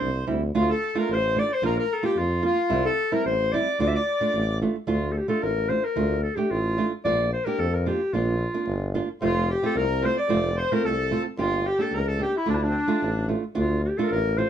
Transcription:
Already playing: C5
0.01 C2
0.27 D2 G3 C4 E4
0.55 D2 A3 D4 F4
0.69 A4
0.95 A3 D4 F4 A#4
0.99 A#4
1.09 A1 C5
1.14 C5
1.36 A3 D4 F4 D5
1.52 C5
1.62 A#1 A#3 D4 F4 A#4
1.79 A#4
1.93 A4
2.03 A#3 D4 F4 G4
2.16 F2 F4
2.42 A#3 D4 F4
2.70 C2 G3 C4 E4
2.85 A4
3.12 G3 C4 E4 A#4
3.25 A1 C5
3.52 G3 C4 E4 D5
3.79 D2 A3 D4 F4 D5
3.87 E5
3.95 D5
4.21 A3 D4 F4
4.34 A1
4.61 A3 D4 F4
4.87 D2 A3 D4 F4
5.12 A4
5.17 G4
5.28 A3 D4 F4 A4
5.42 A1 A#4
5.69 A3 D4 F4 C5
5.84 A#4
5.96 D2 A3 D4 F4
6.23 A4
6.36 A3 D4 G4
6.51 A1 F4
6.77 A3 D4 F4
7.05 A#1 A#3 D4 F4 D5
7.33 C5
7.45 A#3 D4 G4 A#4
7.59 F2 A4
7.74 A#4
7.86 A#3 D4 F4 G4
8.13 A#1 A#3 D4 F4
8.54 A#3 D4 F4
8.67 G1
8.94 A#3 D4 F4
9.21 F1 A3 C4 F4
9.49 G4
9.63 A3 C4 F4 A4
9.75 C2 A#4
10.02 A3 C4 F4 C5
10.17 D5
10.29 F1 A3 C4 F4
10.57 C5
10.72 A3 C4 F4 A#4
10.84 C2 A4
11.11 A3 C4 F4
11.38 G1 A#3 D4 F4 G4
11.65 G4
11.78 A#3 D4 G4 A4
11.92 C#2 A#4
12.07 A4
12.19 A#3 D4 G4
12.36 E4
12.46 D2 A3 D4 F4
12.55 E4
12.62 D4
12.69 C4
12.77 D4
12.88 A3 D4 F4
13.02 A1
13.28 A3 D4 F4
13.55 D2 A3 D4 F4
13.84 G4
13.97 A3 D4 F4 A4
14.03 A4 A#4
14.11 A1 A#4
14.38 A3 D4 F4 C5

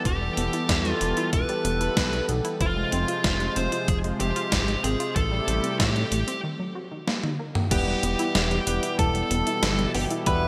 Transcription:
Already playing: E3 G3 B3 G4
0.05 E1 E3 G4 A4, kick, closed hi-hat
0.21 G3
0.37 E1 B3, closed hi-hat
0.53 E4, closed hi-hat
0.69 E2 E3, kick, snare, closed hi-hat
0.85 G3, closed hi-hat
0.90 F4
1.01 E1 B3, closed hi-hat
1.17 E4, closed hi-hat
1.33 E1 E3 B4, kick, closed hi-hat
1.49 G3, closed hi-hat
1.65 E1 B3, closed hi-hat
1.81 E4, closed hi-hat
1.97 B1 E3, kick, snare, closed hi-hat
2.13 G3, closed hi-hat
2.29 B1 B3, closed hi-hat
2.45 E4, closed hi-hat
2.61 F1 C3 F3 G#3 F4 C5, kick, closed hi-hat
2.77 G#3
2.92 F1 C4, closed hi-hat
3.08 F4, closed hi-hat
3.24 F1 F3, kick, snare, closed hi-hat
3.40 G#3, closed hi-hat
3.56 F1 C4 C5, closed hi-hat
3.72 F4, closed hi-hat
3.88 F1 F3 G#4, kick, closed hi-hat
4.04 G#3, closed hi-hat
4.20 F1 C4 G4, closed hi-hat
4.36 F4, closed hi-hat
4.52 G#1 F3, kick, snare, closed hi-hat
4.68 G#3, closed hi-hat
4.84 G#1 C4 G#4, closed hi-hat
5.00 F4, closed hi-hat
5.16 A1 C3 E3 G3 A3 E4 G4 A4, kick, closed hi-hat
5.32 G3
5.47 A1 A3, closed hi-hat
5.64 C4, closed hi-hat
5.79 A2 E3 G4, kick, snare, closed hi-hat
5.95 G3, closed hi-hat
6.11 A1 A3, closed hi-hat
6.27 C4, closed hi-hat
6.43 D#3
6.59 F#3
6.75 F#4
6.91 D#3
7.07 A#3, snare
7.23 D#4, high tom
7.39 A#3
7.55 A#3, mid tom
7.71 E1 B2 E3 G3 B3 E4 G4 B4 G5, kick, closed hi-hat, crash
7.87 G3
8.03 E1 B3, closed hi-hat
8.19 E4, closed hi-hat
8.35 E1 E3, snare, closed hi-hat
8.51 G3, closed hi-hat
8.67 E1 G3 B3 E4 G4 B4, closed hi-hat
8.83 E4, closed hi-hat
8.99 E1 E3 A4 A5, kick, closed hi-hat
9.15 G3, closed hi-hat
9.31 E1 B3, closed hi-hat
9.47 E4, closed hi-hat
9.63 G1 E3, snare, closed hi-hat
9.79 G3, closed hi-hat
9.95 G1 B3 G4 G5, open hi-hat
10.11 E4, closed hi-hat
10.26 E1 E3 G3 B3 E4 G4 B4 E5 B5, kick, closed hi-hat
10.43 G3

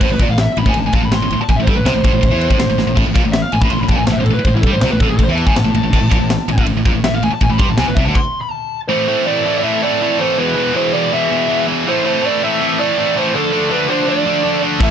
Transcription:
0.01 A1 A2 C5, kick, crash
0.10 A1 A2 B4
0.19 A#1 A#2 D5, kick, ride
0.29 A1 A2 F5
0.38 E5, snare, ride
0.57 A1 A2 B5, ride
0.66 A1 A2 G#5, kick
0.74 A1 A2, ride
0.79 A5
0.83 A1 A2 G#5
0.93 A#1 A#2 A5, kick, ride
1.02 A1 A2 B5
1.11 A1 A2 C6, snare, ride
1.21 A1 A2
1.30 A1 A2, ride
1.39 A5, muted fingered electric bass stroke, muted distorted electric guitar stroke
1.48 A1 A2 G#5, kick, ride
1.56 A1 A2 E5
1.62 C5
1.67 G2 G3 A4, kick, ride
1.76 A1 A2 B4
1.85 C2 C3 C5, snare, ride
1.95 A1 A2
2.04 A1 A2, kick, ride
2.13 A1 A2
2.21 A1 A2, kick, ride
2.31 E2 E3
2.41 ride
2.50 A1 A2, kick
2.60 A1 A2, snare, ride
2.69 A1 A2
2.78 A1 A2, snare
2.87 A1 A2
2.96 A1 A2, kick, crash
3.07 A1 A2
3.15 A#1 A#2, kick, ride
3.25 A1 A2
3.32 E5, snare, ride
3.42 F5
3.52 A1 A2 G#5, ride
3.61 A1 A2 B5, kick
3.70 A1 A2 C6, ride
3.80 A1 A2 B5
3.88 A#1 A#2 A5, kick, ride
3.97 A1 A2 G#5
4.06 A1 A5, snare, ride
4.10 A2 E5
4.18 A1 A2 C5
4.25 A1 A4, ride
4.31 A2 B4
4.37 muted fingered electric bass stroke, muted distorted electric guitar stroke
4.45 A1 A2 C5, kick, ride
4.54 A1 A2 E4
4.62 G2 A4, kick, ride
4.67 G3
4.72 A1 A2 C5
4.81 C2 C5, snare, ride
4.85 C3
4.91 A1 A2 B4
5.00 A1 A2 A4, kick, ride
5.09 A1 A2 G#4
5.17 A1 A2 A4, kick, ride
5.24 C5
5.28 E2 E3 E5
5.35 A5, ride
5.46 A1 A2 G#5, kick
5.56 A1 A2 A5, snare, ride
5.65 A1 A2
5.75 A1 A2, ride
5.83 A1 A2
5.93 A1 A2, kick, crash
6.01 A1 A2
6.11 A#1 A#2, kick, ride
6.19 A1 A2
6.30 snare, ride
6.48 A1 A2, ride
6.58 A1 A2, kick
6.66 A1 A2, ride
6.75 A1 A2
6.85 A#1 A#2, kick, ride
6.94 A1 A2
7.03 A1 A2 E5, snare, ride
7.13 A1 A2 F5
7.22 A1 A2 G#5, ride
7.31 A5, muted distorted electric guitar stroke, muted fingered electric bass stroke
7.41 A1 A2 G#5, kick, ride
7.50 A1 A2 B5
7.59 G2 G3 C6, kick, ride
7.68 A1 A2 A5
7.78 C2 C3 G#5, snare, ride
7.87 A1 A2 B4
7.95 C2 C3 E5, kick, ride
8.05 D2 D3 A5
8.15 C6, kick, crash
8.41 B5
8.51 A5
8.88 A2 E3 A3 C4 A4 C5
9.08 A2 E3 A3
9.27 A2 E3 A3 D5
9.46 A2 E3 A3
9.58 D5
9.62 A2 E3 A3 E5
9.83 A2 E3 A3 D5
10.02 A2 E3 A3
10.19 A2 E3 A3 C5
10.38 E2 B2 E3 B3 G#4 B4
10.56 E2 B2 E3
10.74 E2 B2 E3 C5
10.93 E2 B2 E3 D5
11.12 E2 B2 E3 E5
11.30 E2 B2 E3
11.48 E2 B2 E3
11.67 E2 B2 E3
11.86 A2 E3 A3 C4 A4 C5
12.04 A2 E3 A3 C5
12.22 A2 E3 A3 D5
12.43 A2 E3 A3 E5
12.61 A2 E3 A3
12.79 A2 E3 A3 D5
12.98 A2 E3 A3
13.15 A2 E3 A3 C5
13.35 D3 F3 A3 D4 A4
13.52 D3 A3 D4
13.70 D3 A3 D4 B4
13.89 D3 A3 D4 C5
14.07 D3 A3 D4 D5
14.26 D3 A3 D4
14.44 D3 A3 D4
14.62 D3 A3 D4
14.80 A1 A2 E3 A3 E5, kick, crash, china
14.85 E3 C4

